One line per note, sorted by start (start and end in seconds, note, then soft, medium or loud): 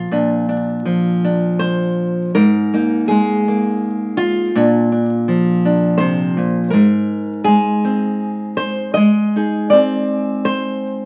0.00 0.84 F3 medium
0.00 2.35 F4 medium
0.11 2.31 A#2 medium
0.11 0.47 D4 soft
0.49 1.23 D4 soft
0.85 2.35 F3 medium
1.24 2.31 D4 soft
1.59 2.34 C5 medium
2.35 4.50 G#2 medium
2.35 3.07 A#4 medium
2.74 3.47 A#3 soft
2.74 4.17 D#4 soft
3.08 4.51 G#3 medium
3.08 4.54 G#4 medium
3.48 4.55 A#3 medium
4.17 6.72 F4 loud
4.55 6.36 A#2 medium
4.55 4.91 D4 soft
4.92 5.64 D4 soft
5.28 6.73 F3 medium
5.65 6.69 D4 soft
5.98 6.36 C3 medium
5.98 6.70 C5 medium
6.37 6.73 A#2 medium
6.70 8.93 G#2 medium
6.70 7.44 A#4 medium
7.44 8.93 G#3 medium
7.44 8.56 G#4 medium
7.84 8.93 C4 soft
8.57 8.93 C5 medium
8.94 11.05 G#3 medium
8.94 9.69 D#5 medium
9.36 11.05 D#4 soft
9.36 11.05 G#4 soft
9.70 11.05 C4 medium
9.70 10.45 D5 loud
10.45 11.05 C5 medium